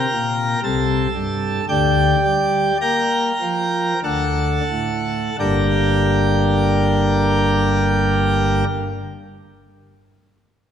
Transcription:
0.00 0.60 A#4 medium
0.00 0.60 G5 medium
0.00 0.60 A#5 medium
0.13 0.55 A#2 medium
0.63 1.07 C2 medium
0.63 1.07 C3 medium
0.63 1.65 A4 medium
0.63 1.65 A5 medium
1.15 1.60 G2 medium
1.69 2.15 D2 medium
1.69 2.15 D3 medium
1.69 2.77 G4 medium
1.69 2.77 D5 medium
1.69 2.77 G5 loud
2.24 2.72 G3 medium
2.81 3.32 A#3 medium
2.81 4.00 A#4 medium
2.81 4.00 G5 medium
2.81 3.99 A#5 loud
3.41 3.94 F3 medium
4.04 4.60 D2 medium
4.04 4.60 D3 medium
4.04 5.36 A4 medium
4.04 5.36 F#5 medium
4.04 5.36 A5 medium
4.71 5.30 A2 medium
5.39 8.63 G1 medium
5.39 8.64 G2 medium
5.39 8.64 D3 medium
5.39 8.64 A#3 soft
5.39 8.64 D4 medium
5.39 8.64 G4 medium
5.39 8.64 A#4 medium
5.39 8.64 G5 medium

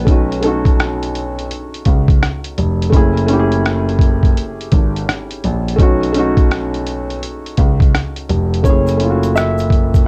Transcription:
0.00 0.39 B4 loud
0.05 1.46 B1 medium
0.05 0.33 A3 medium
0.05 0.34 C#4 medium
0.05 kick loud
0.05 closed hi-hat medium
0.09 0.35 D#4 medium
0.09 0.36 F#4 medium
0.32 closed hi-hat soft
0.41 1.39 A3 medium
0.41 1.40 C#4 medium
0.41 2.53 A4 loud
0.41 closed hi-hat medium
0.45 1.41 D#4 medium
0.45 1.43 F#4 medium
0.65 kick medium
0.65 closed hi-hat soft
0.80 cross-stick loud
0.80 closed hi-hat medium
1.03 closed hi-hat soft
1.15 closed hi-hat medium
1.39 closed hi-hat soft
1.51 closed hi-hat medium
1.74 closed hi-hat soft
1.85 2.17 C#2 medium
1.85 kick medium
1.85 closed hi-hat medium
2.08 kick loud
2.08 closed hi-hat soft
2.23 cross-stick loud
2.23 closed hi-hat medium
2.44 closed hi-hat soft
2.58 2.89 F1 loud
2.58 closed hi-hat medium
2.82 closed hi-hat soft
2.90 4.32 F#1 loud
2.90 3.18 A3 medium
2.90 3.19 C#4 medium
2.90 kick loud
2.90 closed hi-hat medium
2.94 3.20 E4 medium
2.94 3.21 G#4 loud
3.17 closed hi-hat soft
3.26 4.25 A3 loud
3.26 4.26 C#4 loud
3.26 closed hi-hat medium
3.31 4.27 E4 medium
3.31 3.39 G4 medium
3.39 4.32 G#4 loud
3.52 closed hi-hat soft
3.66 cross-stick loud
3.66 closed hi-hat medium
3.89 closed hi-hat soft
3.99 kick medium
3.99 closed hi-hat medium
4.23 kick medium
4.23 closed hi-hat medium
4.37 closed hi-hat medium
4.61 closed hi-hat soft
4.72 5.03 G#1 loud
4.72 kick medium
4.72 closed hi-hat medium
4.96 closed hi-hat soft
5.09 cross-stick loud
5.09 closed hi-hat medium
5.31 closed hi-hat medium
5.44 5.75 A#1 medium
5.44 closed hi-hat medium
5.68 closed hi-hat soft
5.76 7.18 B1 loud
5.76 6.04 A3 medium
5.76 6.05 C#4 medium
5.76 kick loud
5.76 closed hi-hat medium
5.80 6.06 D#4 medium
5.80 6.07 F#4 loud
6.03 closed hi-hat soft
6.13 7.11 A3 medium
6.13 7.12 C#4 medium
6.13 closed hi-hat medium
6.17 7.13 D#4 medium
6.17 7.14 F#4 loud
6.37 kick medium
6.37 closed hi-hat soft
6.51 cross-stick loud
6.51 closed hi-hat medium
6.74 closed hi-hat soft
6.87 closed hi-hat medium
7.10 closed hi-hat soft
7.23 closed hi-hat medium
7.46 closed hi-hat soft
7.57 7.89 C#2 loud
7.57 kick medium
7.57 closed hi-hat medium
7.80 kick loud
7.80 closed hi-hat soft
7.95 cross-stick loud
7.95 closed hi-hat medium
8.16 closed hi-hat soft
8.29 8.60 F1 loud
8.29 closed hi-hat medium
8.54 closed hi-hat soft
8.63 10.03 F#1 medium
8.63 8.90 A3 medium
8.63 8.91 C#4 medium
8.63 9.38 C#5 loud
8.63 kick loud
8.63 closed hi-hat medium
8.63 shaker medium
8.67 8.93 E4 medium
8.67 8.94 G#4 medium
8.87 closed hi-hat soft
8.87 shaker soft
8.97 9.96 A3 medium
8.97 9.97 C#4 medium
8.97 closed hi-hat medium
9.01 9.98 E4 medium
9.01 9.10 F4 medium
9.10 10.03 F#4 medium
9.23 closed hi-hat soft
9.23 shaker medium
9.36 10.07 E5 loud
9.36 cross-stick loud
9.36 closed hi-hat medium
9.36 shaker medium
9.58 closed hi-hat soft
9.58 shaker medium
9.70 kick medium
9.70 closed hi-hat medium
9.94 kick medium
9.94 closed hi-hat soft
9.94 shaker medium

